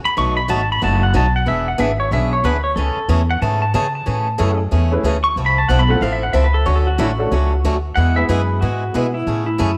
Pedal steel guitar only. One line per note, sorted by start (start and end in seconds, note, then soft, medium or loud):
0.05 0.17 B5 loud
0.18 0.36 C#6 loud
0.37 0.49 B5 medium
0.50 0.69 A5 medium
0.72 0.83 B5 medium
0.84 1.03 A5 medium
1.03 1.15 F#5 medium
1.16 1.35 A5 medium
1.36 1.48 F#5 medium
1.48 1.67 E5 medium
1.68 1.80 F#5 medium
1.80 1.99 E5 medium
2.00 2.12 C#5 loud
2.13 2.32 E5 medium
2.33 2.45 C#5 medium
2.45 2.63 B4 medium
2.64 2.76 C#5 medium
2.76 3.08 A4 loud
3.31 3.42 F#5 loud
3.42 3.61 A5 medium
3.62 3.74 A5 medium
3.75 3.94 A5 medium
3.95 4.58 A5 medium
5.24 5.36 C#6 loud
5.46 5.57 B5 medium
5.58 5.69 A5 medium
5.69 5.80 F#5 medium
5.79 5.90 B5 loud
5.91 6.01 F#5 loud
6.02 6.13 F5 medium
6.13 6.23 E5 medium
6.23 6.34 F#5 medium
6.33 6.44 E5 medium
6.44 6.55 B4 medium
6.54 6.66 A4 medium
6.66 6.77 C#5 loud
6.76 6.87 A4 medium
6.87 6.98 F#4 medium
7.00 7.09 E4 medium
7.09 7.73 F#4 loud
7.96 8.16 F#5 loud
8.16 8.29 E5 loud
8.29 8.61 B4 medium
8.61 9.12 F#4 loud
9.14 9.45 E4 loud
9.46 9.78 E4 loud